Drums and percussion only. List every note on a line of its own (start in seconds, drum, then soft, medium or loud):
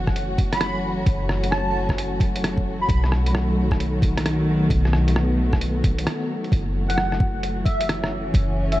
0.07 kick medium
0.07 cross-stick soft
0.16 closed hi-hat medium
0.38 kick loud
0.38 closed hi-hat medium
0.53 cross-stick medium
0.53 closed hi-hat medium
0.61 cross-stick loud
0.61 closed hi-hat medium
1.07 kick loud
1.07 closed hi-hat medium
1.29 cross-stick medium
1.44 closed hi-hat medium
1.52 cross-stick loud
1.89 kick medium
1.89 cross-stick medium
1.98 closed hi-hat medium
2.20 kick loud
2.20 closed hi-hat medium
2.36 closed hi-hat medium
2.44 cross-stick loud
2.44 closed hi-hat medium
2.57 kick medium
2.89 kick loud
2.89 closed hi-hat medium
3.04 cross-stick soft
3.12 cross-stick medium
3.26 closed hi-hat medium
3.35 cross-stick loud
3.71 kick medium
3.71 cross-stick medium
3.80 closed hi-hat medium
4.02 kick loud
4.02 closed hi-hat medium
4.17 cross-stick medium
4.17 closed hi-hat medium
4.26 cross-stick loud
4.26 closed hi-hat medium
4.70 kick loud
4.70 closed hi-hat medium
4.85 cross-stick soft
4.93 cross-stick medium
5.08 closed hi-hat medium
5.16 cross-stick loud
5.53 kick medium
5.53 cross-stick medium
5.61 closed hi-hat medium
5.84 kick loud
5.84 closed hi-hat medium
5.98 closed hi-hat medium
6.06 cross-stick loud
6.06 closed hi-hat medium
6.44 closed hi-hat soft
6.52 kick loud
6.52 closed hi-hat medium
6.90 closed hi-hat medium
6.98 cross-stick loud
7.12 cross-stick soft
7.20 kick loud
7.43 closed hi-hat medium
7.66 kick loud
7.66 closed hi-hat medium
7.81 closed hi-hat medium
7.89 cross-stick loud
7.89 closed hi-hat medium
8.04 cross-stick medium
8.34 kick loud
8.34 closed hi-hat medium
8.72 closed hi-hat medium